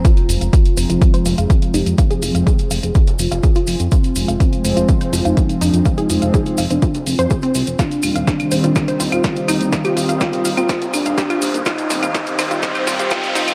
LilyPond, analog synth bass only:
\new Staff \with { instrumentName = "Analog synth bass" } { \clef bass \time 4/4 \key f \dorian \tempo 4 = 124 r8 f,,16 f,,16 r8 f,,16 f,,16 r8 f,,16 f,,16 r8 f,,16 f,16 | r8 f,,16 f,,16 r8 f,,16 f,,16 r8 f,,16 f,,16 r8 f,,16 f,16 | r8 f,,16 f,,16 r8 f,,16 f,,16 r8 f,,16 f,,16 r8 f,,16 f,16 | r8 f,,16 f,,16 r8 f,,16 f,,16 r8 f,,16 f,16 r8 c,16 f,,16 |
r8 ees,,16 ees,,16 r8 ees,,16 ees,,16 r8 ees,,16 ees,,16 r8 ees,,16 ees,16 | r8 ees,,16 ees,,16 r8 ees,,16 ees,,16 r8 ees,,16 ees,,16 r8 ees,,16 ees,16 | r8 ees,,16 ees,,16 r8 ees,,16 ees,,16 r8 ees,,16 ees,,16 r8 ees,,16 ees,16 | }